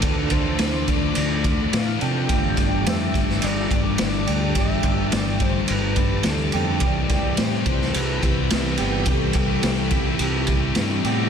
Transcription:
<<
  \new Staff \with { instrumentName = "String machine" } { \time 4/4 \key g \mixolydian \tempo 4 = 106 << { <a' f'' b''>1 | <g' a'' d'''>1~ | <g' a'' d'''>1 | <g' g'' b''>1~ |
<g' g'' b''>1 | } \\ { d''1~ | d''1~ | d''1 | e''1~ |
e''1 | } >> }
  \new Staff \with { instrumentName = "Soft synth lead" } { \time 4/4 \key g \mixolydian a'8 c''4 d''4. f''8 g''8~ | g''4 e''4 d''8 d''8 d''4 | e''4 d''8 c''8 b'4 a'8. r16 | d''4 c''4 b'4 b'4 |
a'4. r8 g'4 r4 | }
  \new Staff \with { instrumentName = "Clean electric guitar" } { \time 4/4 \key g \mixolydian <d f c' d' a'>2.~ <d f c' d' a'>8 <d f c' d' a'>8 | <g a d' g'>2.~ <g a d' g'>8 <g a d' g'>8 | <g a d' g'>2.~ <g a d' g'>8 <g a d' g'>8 | <c e g g'>2.~ <c e g g'>8 <c e g b g'>8 |
<c e g g'>2.~ <c e g g'>8 <c e g b g'>8 | }
  \new Staff \with { instrumentName = "Distorted electric guitar" } { \clef bass \time 4/4 \key g \mixolydian <d a d'>4. <d a d'>4. <d a d'>4 | <g, d g>4. <g, d g>4. <g, d g>4 | <g, d g>4. <g, d g>4. <g, d g>4 | <c g c'>4. <c g c'>4. <c g c'>4 |
<c g c'>4. <c g c'>4. <c g c'>4 | }
  \new Staff \with { instrumentName = "Fingered electric bass" } { \clef bass \time 4/4 \key g \mixolydian d,8 d,8 d,4 d,4 a,8 c8 | g,,8 g,,8 f,8 g,,8 g,,8 g,,8 g,,8 d,8 | g,,8 g,,8 g,,4 g,,4 d,8 f,8 | c,8 c,8 a,8 c,8 c,8 c,8 c,8 g,,8 |
c,8 c,8 c,4 c,4 g,8 a,8 | }
  \new DrumStaff \with { instrumentName = "Drums" } \drummode { \time 4/4 <bd cymr>8 <bd cymr>8 <cymr sn>8 <bd cymr>8 cymr8 <bd cymr>8 <cymr sn>8 cymr8 | <bd cymr>8 <bd cymr sn>8 <cymr sn>8 <bd cymr>16 sn16 cymr8 <bd cymr>8 <cymr sn>8 cymr8 | <bd cymr>8 <bd cymr>8 <cymr sn>8 <bd cymr>8 cymr8 <bd cymr>8 <cymr sn>8 cymr8 | <bd cymr>8 <bd cymr sn>8 <cymr sn>8 <bd cymr>16 sn16 cymr8 <bd cymr>8 <cymr sn>8 cymr8 |
<bd cymr>8 <bd cymr>8 <cymr sn>8 <bd cymr>8 cymr8 <bd cymr>8 <cymr sn>8 cymr8 | }
>>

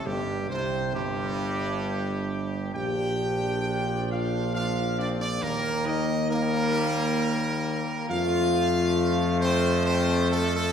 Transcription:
<<
  \new Staff \with { instrumentName = "Trumpet section" } { \time 3/4 \key f \major \tempo 4 = 68 g'8 c''8 g'2 | g''4. f''8 f''8 d''16 d''16 | bes'8 ees''8 bes'2 | f''4. c''8 c''8 a'16 a'16 | }
  \new Staff \with { instrumentName = "French horn section" } { \time 3/4 \key f \major g8 c'8 g2 | g'4. f'8 f'8 d'16 d'16 | bes8 ees'8 bes2 | f'4. c'8 c'8 a16 a16 | }
  \new Staff \with { instrumentName = "Trombone section" } { \clef bass \time 3/4 \key f \major << { g,8 c8 g,2 | d'2 d'8 c'8 | bes4 bes2 | a2. | } \\ { r2. | f2 f4 | g4 g2 | f2. | } >> }
  \new Staff \with { instrumentName = "Tuba" } { \clef bass \time 3/4 \key f \major g,,8 c,8 g,,2 | bes,,2. | ees,2. | f,2. | }
>>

